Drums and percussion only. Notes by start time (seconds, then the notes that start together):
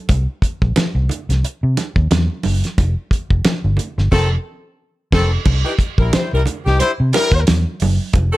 0.09 kick, closed hi-hat, muted conga
0.42 kick, closed hi-hat
0.62 kick
0.76 snare, closed hi-hat, high conga
1.09 closed hi-hat, low conga
1.30 snare, closed hi-hat
1.44 closed hi-hat
1.77 snare, closed hi-hat, muted conga
1.96 kick
2.11 snare, closed hi-hat, high conga
2.43 open hi-hat, high conga
2.64 snare, closed hi-hat
2.78 kick, closed hi-hat, muted conga
3.11 kick, closed hi-hat
3.31 kick
3.45 snare, closed hi-hat, high conga
3.77 closed hi-hat, low conga
3.98 snare
4.12 kick, snare, crash
5.12 kick, snare, crash
5.46 kick, crash, muted conga
5.79 kick, closed hi-hat
5.98 kick
6.13 snare, closed hi-hat, high conga
6.46 closed hi-hat, low conga
6.66 snare
6.80 closed hi-hat, muted conga
7.13 snare, closed hi-hat, muted conga
7.32 kick
7.47 snare, closed hi-hat, high conga
7.80 open hi-hat, high conga
8.13 kick, closed hi-hat, muted conga